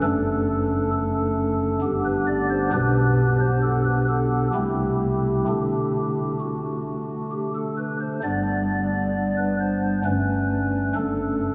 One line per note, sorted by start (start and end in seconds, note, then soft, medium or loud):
0.04 1.78 F#1 medium
0.04 1.78 F#2 medium
0.04 1.78 A3 medium
0.04 1.78 D4 medium
0.04 0.90 A4 loud
0.93 2.01 A4 loud
1.82 2.69 G1 medium
1.82 2.69 G2 medium
1.82 2.69 B3 medium
1.82 2.69 D4 medium
1.82 2.69 G4 medium
2.05 2.24 B4 loud
2.28 2.47 D5 loud
2.50 2.69 C5 loud
2.73 4.50 B1 medium
2.73 4.50 B2 medium
2.73 4.50 B3 medium
2.73 4.50 D4 medium
2.73 4.50 G4 medium
2.73 3.38 B4 loud
3.40 3.59 C5 loud
3.62 3.82 A4 loud
3.85 4.05 B4 loud
4.09 4.47 A4 loud
4.55 5.44 C2 medium
4.55 5.44 C3 medium
4.55 5.44 A3 soft
4.55 5.44 C4 soft
4.55 5.44 E4 soft
4.55 5.44 G4 loud
5.48 8.20 D3 medium
5.48 8.20 A3 soft
5.48 8.19 D4 soft
5.48 6.37 G4 loud
6.40 7.28 F#4 medium
7.31 7.50 G4 medium
7.55 7.74 A4 medium
7.77 7.97 B4 medium
8.00 8.19 C5 medium
8.24 10.01 G1 medium
8.24 10.01 G2 medium
8.24 10.01 G3 medium
8.24 10.01 B3 medium
8.24 10.01 D4 soft
8.24 9.34 D5 loud
9.38 9.57 B4 medium
9.60 9.98 C5 loud
10.05 10.93 G1 medium
10.05 10.93 G2 medium
10.05 10.93 A3 soft
10.05 10.93 C#4 soft
10.05 10.93 B4 loud
10.95 11.55 F#1 medium
10.95 11.55 F#2 medium
10.95 11.55 A3 medium
10.95 11.55 D4 medium
10.95 11.55 A4 loud